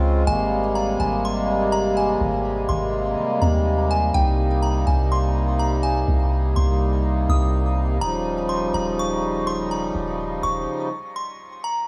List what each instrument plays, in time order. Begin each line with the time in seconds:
Already playing: 808-style bass C#2, harmonium C#3 G#3 C4 F4
0.27 808-style bass G#1, harmonium C3 G3 A#3, synth bell G#5
0.75 synth bell A#5
1.00 808-style bass G#1, synth bell G#5
1.25 synth bell C6
1.72 synth bell A#5
1.97 synth bell G#5
2.21 808-style bass G#1
2.69 808-style bass G#1, synth bell C6
3.42 808-style bass D#2, synth bell A#5
3.91 synth bell G#5
4.14 808-style bass C2, harmonium D#4, synth bell G5
4.62 synth bell A#5
4.87 808-style bass C2, synth bell G#5
5.12 synth bell C6
5.59 synth bell A#5
5.83 synth bell G#5
6.08 808-style bass C2
6.56 808-style bass C2, synth bell C6
7.29 808-style bass C2, synth bell D#6
8.01 808-style bass D#1, harmonium C#3 F3 D#4, synth bell A#5
8.49 synth bell C6
8.74 808-style bass D#1, synth bell A#5
8.99 synth bell C#6
9.47 synth bell C6
9.71 synth bell A#5
9.95 808-style bass D#1
10.43 808-style bass D#1, synth bell C#6
11.16 synth bell C6
11.64 synth bell A#5